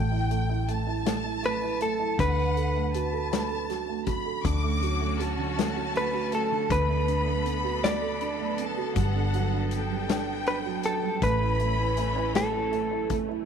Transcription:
Already playing: A1 A3 G5
0.12 E4
0.31 A3, closed hi-hat
0.49 E4
0.68 A3 A5, closed hi-hat
0.87 E4
1.06 A3, snare, closed hi-hat
1.24 E4
1.43 A3 B4, closed hi-hat
1.62 E4
1.81 A3 A4, closed hi-hat
2.00 E4
2.18 D2 D3 B4 F#5, kick, closed hi-hat
2.37 A3
2.56 A4, closed hi-hat
2.76 A3
2.94 F#4 A5, closed hi-hat
3.13 A4
3.32 A3, snare, closed hi-hat
3.51 A4
3.70 F#4, snare, closed hi-hat
3.88 A3
4.07 F#4 B5, kick, closed hi-hat
4.26 A4
4.44 D2 D3 F#3 A3 C#4 F#4 D6, kick, closed hi-hat
4.63 A3
4.82 F#4, closed hi-hat
5.01 A3
5.20 F#4 A5, closed hi-hat
5.39 D3
5.58 A3, snare, closed hi-hat
5.76 F#4
5.95 A3 B4, closed hi-hat
6.14 F#4
6.32 A3 A4, closed hi-hat
6.52 D3
6.70 D2 D3 B3 A4 B4 B5, kick, closed hi-hat
6.89 A3
7.08 D4, closed hi-hat
7.27 A3
7.46 B3, closed hi-hat
7.64 F#4
7.83 A3 D5, snare, closed hi-hat
8.02 A4
8.21 D4, closed hi-hat
8.40 A3
8.58 B3 A5, closed hi-hat
8.77 F#4
8.96 G1 G3 F#5, kick, closed hi-hat
9.15 D4
9.34 F#3, closed hi-hat
9.52 D4
9.71 G5, closed hi-hat
9.90 G3
10.09 D4, snare, closed hi-hat
10.46 D4 B4, closed hi-hat
10.65 F#3
10.83 D4 A4, closed hi-hat
11.03 G3
11.21 A1 E3 A3 C#4 B4 B5, kick, closed hi-hat
11.41 E4
11.60 A3, closed hi-hat
11.78 E4
11.97 A3, closed hi-hat
12.16 E4
12.34 A3 A4, snare, closed hi-hat
12.54 E4
12.72 A3, closed hi-hat
12.91 E4
13.10 A3, kick, closed hi-hat
13.29 E4

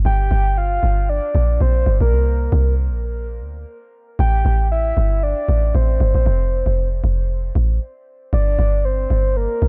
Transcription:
0.05 G1 G5
0.31 G1
0.58 F5
0.83 G1
1.09 D5
1.35 A#1
1.61 A#1 C5
1.86 G1
2.01 A#1 A#4
2.12 C2
2.52 C2
2.90 A#1
3.41 D2
4.19 A1 G5
4.45 A1
4.72 E5
4.97 G1
5.23 D5
5.49 A1
5.75 A1 C5
6.00 G1
6.15 A1 C5
6.26 F1
6.66 F1
7.04 F1
7.55 A1
8.33 G1 D5
8.59 G1
8.85 C5
9.10 G1
9.37 A#4
9.62 A#1

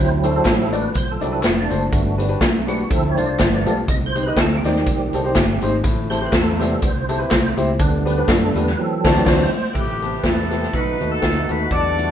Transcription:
Already playing: D2 D3 F#3 C4 E4
0.23 D4 F#4 A4 C5, closed hi-hat, tambourine
0.36 D4 F#4 A4 C5
0.45 A1, kick, snare, clap, closed hi-hat, tambourine
0.73 D4 F#4 A4 B4 D5, closed hi-hat, tambourine
0.94 B1 C5, kick, closed hi-hat, tambourine
1.11 A4
1.21 C2 F#3 C4 D4 E4 F#4 A4 D5, closed hi-hat, tambourine
1.28 D4 F#4 A4 B4
1.43 F1 F#4, snare, clap, closed hi-hat, tambourine
1.61 D4
1.70 F#1 D4 F#4 A4 C5, closed hi-hat, tambourine
1.91 G1 G2 A3 B3 F#4, kick, closed hi-hat, tambourine
2.18 D4 F#4 G4 B4, closed hi-hat, tambourine
2.29 D4 F#4 G4 B4
2.41 B1, kick, snare, clap, closed hi-hat, tambourine
2.67 D4 F#4 G4 B4, closed hi-hat, tambourine
2.90 D2 D3 F3 C4 E4 A4, kick, closed hi-hat, tambourine
3.09 C#5
3.16 C2 D4 F4 A4 C5 D5, closed hi-hat, tambourine
3.27 D4 F4 A4 C5
3.38 G1 G2 F3 A3 B3, kick, snare, clap, closed hi-hat, tambourine
3.65 B1 B3 F4 G4 A4 D5, closed hi-hat, tambourine
3.88 C2 C3 D#5, kick, closed hi-hat, tambourine
4.06 C5
4.15 C4 D#4 G4 C5, closed hi-hat, tambourine
4.23 D#4 G4 B4
4.27 C4 D#5
4.36 D2, kick, snare, clap, closed hi-hat, tambourine
4.41 A4
4.57 G4
4.64 D#2 D#3 G3 C4 D#4 G4 D5, snare, closed hi-hat, tambourine
4.76 snare
4.86 B1, kick, closed hi-hat, tambourine
5.13 C2 C4 D#4 G4 A4, closed hi-hat, tambourine
5.25 C4 D#4 G4 C5
5.35 G1, kick, snare, clap, closed hi-hat, tambourine
5.62 G#1 C4 D#4 G4 C5, closed hi-hat, tambourine
5.84 A1 A2, kick, closed hi-hat, tambourine
6.10 C4 E4 G4 A4 C5, closed hi-hat, tambourine
6.21 C4 E4 G4 C5
6.26 B4
6.33 E2 A4, kick, snare, clap, closed hi-hat, tambourine
6.59 C3 G3 B3 C4 E4 G4 C5, snare, closed hi-hat, tambourine
6.82 C2 C5, kick, closed hi-hat, tambourine
7.09 C4 E4 G4 A4, closed hi-hat, tambourine
7.19 C4 E4 G4 B4
7.31 C2, kick, snare, clap, closed hi-hat, tambourine
7.57 C#2 C4 E4 G4 C5, closed hi-hat, tambourine
7.79 D2 D3 G3 B3, kick, closed hi-hat, tambourine
8.05 B3 D4 G4 B4, closed hi-hat, tambourine
8.18 B3 D4 G4 B4
8.28 F#2 A4, kick, snare, clap, closed hi-hat, tambourine
8.55 E2 B3 D4 G4 B4, closed hi-hat, tambourine
8.64 B4, snare
8.78 E3 F#3 C4 A4
9.05 D2 C4 D4 F#4 A4 E5, kick, snare, crash
9.11 D5
9.25 D2 C4 D4 F#4 C5, kick, snare, crash
9.73 A1 A2 C3 A3 B3 G4 A4 B4 E5 G5, kick, closed hi-hat
9.77 C4 G4
10.02 B3 C4 G4 A4, closed hi-hat
10.24 E2 C4 E4 A4, kick, snare, closed hi-hat
10.50 B3 C4 G4 A4, snare, closed hi-hat
10.63 snare
10.73 B1 B2 A3 D#4 F#4 B4 D#5 F#5 A5, kick, closed hi-hat
11.00 D#2 A3 B3 D#4 F#4, closed hi-hat
11.12 D#4 F#4 A4
11.22 D2, kick, snare, closed hi-hat
11.48 D#2 A3 B3 D#4 A4 B4, closed hi-hat
11.71 E2 E3 F#3 D4 F#4 G4 A4 D5 E5 F#5, kick, closed hi-hat
11.77 G3
11.97 G3 A3 D4 F#4, closed hi-hat

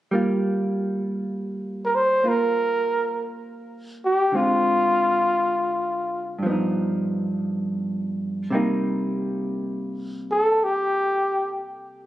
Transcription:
0.11 G3 A#3 F4
1.85 A#4
1.95 C5
2.24 A#3 F4
2.28 A#4
4.05 G4
4.32 D3 G#3 C4 F4
4.37 F4
6.39 G2
6.43 F3 B3
6.50 D#4
8.50 C3 G3 A#3
8.55 D#4
10.31 A4
10.64 G4

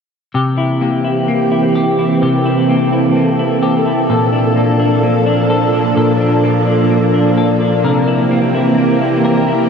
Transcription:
0.34 C3 E3 A#3 C4 G4
0.58 E4
0.81 A#3
1.05 E4
1.28 A#3
1.52 E4
1.75 G4
1.99 E4
2.22 C3 G4 A4
2.45 E4
2.69 A#3
2.92 E4
3.16 A#3
3.39 E4
3.63 G4
3.86 E4
4.09 A#2 F3 D4 A4
4.33 D4
4.56 A#3
4.80 D4
5.03 A#3
5.26 D4
5.50 A4
5.73 D4
5.97 A#2 A4
6.20 D4
6.44 A#3
6.67 D4
6.91 A#3
7.14 D4
7.38 A4
7.61 D4
7.83 C3 E3 C4 G4 A#4
8.08 E4
8.31 A#3
8.55 E4
8.78 A#3
9.01 E4
9.25 A#4
9.48 E4

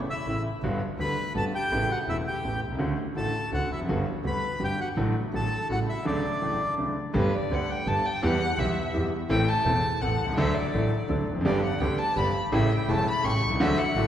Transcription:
0.09 E4 E5
0.26 A1 A2 C#3 E3 A3 E4
0.62 G1 G2 D3 G3 B3 F#4
0.98 D2 D3 G3 B3 F#4 B4 B5
1.34 G1 G2 D3 G3 B3 F#4 A4 A5
1.52 G4 G5
1.71 A1 A2 C#3 A3 B3 E4
1.89 F#4 F#5
2.07 E1 E2 C#3 A3 B3 E4 E5
2.26 G4 G5
2.44 A1 A2 C#3 A3 B3 E4
2.62 C2
2.66 B1
2.72 C2 C#2
2.78 D2 D3 A3 C#4 F#4
3.15 A1 A2 D3 A3 C#4 F#4 A4 A5
3.51 D2 D3 A3 C#4 F#4 F#5
3.70 F1 E2 E4 E5
3.79 F2
3.83 F#2
3.88 G1 G2 D3 G3 B3 F#4
4.24 D2 D3 G3 B3 F#4 B4 B5
4.60 G1 G2 D3 G3 B3 F#4 G4
4.64 G5
4.80 F#4 F#5
4.97 A1 A2 D3 F#3 A3 F#4
5.33 A1 A2 D3 F#3 A3 F#4 A4 A5
5.69 A1 A2 C#3 G3 A3 E4 F#4 F#5
5.88 E4 E5
6.05 D2 C#3 D3 F#3 A3 D4 D5
6.42 A1 A2 C#3 F#3 A3 D4
6.78 D2 C#3 D3 F#3 A3 D4
7.14 G1 G2 D3 G3 B3 G4
7.18 B4
7.34 D5
7.51 D2 D3 G3 B3 G4 F#5
7.70 G5
7.86 G1 G2 D3 G3 B3 G4 A5
8.06 G5
8.22 E2 E3 G3 B3 G4 F#5
8.57 B1 B2 E3 G3 B3 G4 E5
8.93 E2 E3 G3 B3 G4
9.29 A1 A2 E3 A3 C4 A4 G5
9.49 A5
9.65 E1 E2 E3 A3 C4 A4
10.01 A1 A2 E3 A3 C4 A4 F#5
10.19 C2
10.25 B1
10.29 C2
10.33 C#2
10.37 D2 D3 F#3 A3 D4 A4 E5
10.54 D5
10.73 A1 A2 F#3 A3 D4 A4
11.08 D2 D3 F#3 A3 D4 A4
11.27 F1
11.31 E2
11.36 F2
11.41 F#2 D3
11.45 G1 G2 G3 B3 D4 G4 D5
11.63 F#5
11.80 D2 D3 G3 B3 D4 G4 G5
11.99 A5
12.16 G1 G2 D3 G3 B3 D4 G4 B5
12.52 A1 A2 C#3 G3 A3 C#4 E4 G4 E5
12.72 G5
12.88 E1 E2 C#3 G3 A3 C#4 E4 G4 A5
13.08 B5
13.23 A1 A2 C#3 G3 A3 C#4 E4 G4 C#6
13.42 B1 C2
13.50 C2
13.55 C#2
13.59 D2 D3 F#3 A3 D4 F#4 E5
13.78 F#5
13.95 A1 A2 D3 F#3 A3 D4 F#4

